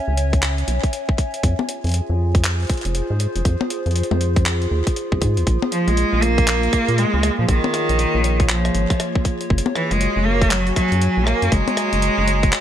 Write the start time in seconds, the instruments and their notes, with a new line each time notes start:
Already playing: ambient pad C#4 C#5 E5 G#5
0.08 analog synth bass C#2
0.17 closed hi-hat
0.33 kick, closed hi-hat
0.43 clap, closed hi-hat
0.58 closed hi-hat
0.68 analog synth bass B1, closed hi-hat
0.83 kick, closed hi-hat
0.93 closed hi-hat
1.09 kick
1.18 kick, closed hi-hat
1.34 closed hi-hat
1.43 analog synth bass F2, ambient pad F4, kick, closed hi-hat
1.59 ambient pad G#4, high tom
1.69 closed hi-hat
1.84 analog synth bass F2, closed hi-hat
1.87 closed hi-hat
1.89 closed hi-hat
1.92 closed hi-hat
1.94 closed hi-hat
2.10 analog synth bass F2
2.14 ambient pad C5
2.35 kick, closed hi-hat
2.44 clap, closed hi-hat
2.60 closed hi-hat
2.62 closed hi-hat
2.65 closed hi-hat
2.67 kick, closed hi-hat
2.70 closed hi-hat
2.73 closed hi-hat
2.77 closed hi-hat
2.81 closed hi-hat
2.85 analog synth bass F1, closed hi-hat
2.95 closed hi-hat
3.10 analog synth bass G#2
3.20 closed hi-hat
3.36 analog synth bass F1, closed hi-hat
3.45 analog synth bass F2, kick, closed hi-hat
3.61 high tom
3.70 closed hi-hat
3.86 analog synth bass F2, closed hi-hat
3.91 closed hi-hat
3.96 closed hi-hat
4.03 closed hi-hat
4.11 analog synth bass F2, high tom
4.21 closed hi-hat
4.36 kick, closed hi-hat
4.46 clap, closed hi-hat
4.62 closed hi-hat
4.71 analog synth bass D#2
4.87 kick, closed hi-hat
4.96 closed hi-hat
5.12 analog synth bass C2, kick
5.22 analog synth bass G#2, kick, closed hi-hat
5.37 analog synth bass D#2, closed hi-hat
5.47 analog synth bass A#1, ambient pad A#3, kick, closed hi-hat
5.62 high tom
5.72 cello F3, closed hi-hat
5.88 analog synth bass A#1, cello G#3, closed hi-hat
5.97 closed hi-hat
6.13 analog synth bass A#1
6.22 cello A#3, closed hi-hat
6.38 kick, closed hi-hat
6.48 clap, closed hi-hat
6.63 closed hi-hat
6.73 kick, cross-stick, closed hi-hat
6.88 analog synth bass A#2, closed hi-hat
6.98 cello G#3, closed hi-hat
7.14 analog synth bass C#2
7.23 cross-stick, closed hi-hat
7.30 ambient pad C#5
7.39 analog synth bass A#2, cello F3
7.48 analog synth bass A#1, cello D#3, kick, closed hi-hat
7.64 high tom
7.74 cross-stick, closed hi-hat
7.89 analog synth bass A#1, closed hi-hat
7.99 closed hi-hat
8.15 analog synth bass A#1
8.24 closed hi-hat
8.40 kick, closed hi-hat
8.49 cello F3, clap, closed hi-hat
8.65 cross-stick, closed hi-hat
8.75 analog synth bass G#1, closed hi-hat
8.90 kick, cross-stick, closed hi-hat
9.00 cross-stick, closed hi-hat
9.15 kick
9.25 kick, closed hi-hat
9.41 closed hi-hat
9.50 analog synth bass F#1, ambient pad F#4, kick
9.58 closed hi-hat
9.66 high tom
9.75 cello E3, cross-stick
9.91 analog synth bass F#1, cello G#3, closed hi-hat
9.95 ambient pad G#5
10.01 closed hi-hat
10.16 analog synth bass F#1
10.26 cello A#3
10.41 kick, closed hi-hat
10.51 cello F#3, clap, closed hi-hat
10.67 closed hi-hat
10.76 cello F#3, kick, cross-stick, closed hi-hat
10.87 ambient pad A#5
10.92 analog synth bass F#2, closed hi-hat
11.02 closed hi-hat
11.17 analog synth bass A#1
11.26 cello A#3, cross-stick
11.42 analog synth bass F#2, closed hi-hat
11.52 analog synth bass F#1, cello G#3, kick, closed hi-hat
11.68 closed hi-hat, high tom
11.77 cross-stick, closed hi-hat
11.93 analog synth bass F#1, closed hi-hat
12.02 closed hi-hat
12.18 analog synth bass F#1
12.28 closed hi-hat
12.43 kick, closed hi-hat
12.53 clap, closed hi-hat